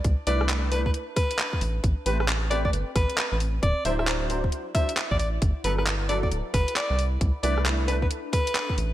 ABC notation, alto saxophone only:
X:1
M:4/4
L:1/16
Q:"Swing 16ths" 1/4=134
K:Clyd
V:1 name="Alto saxophone"
z2 d2 z2 B B z2 B4 z2 | z2 B B z2 d d z2 B2 B B z2 | d2 e e z6 e2 z d d z | z2 B B z2 d d z2 B2 d2 z2 |
z2 d2 z2 B B z2 B4 z2 |]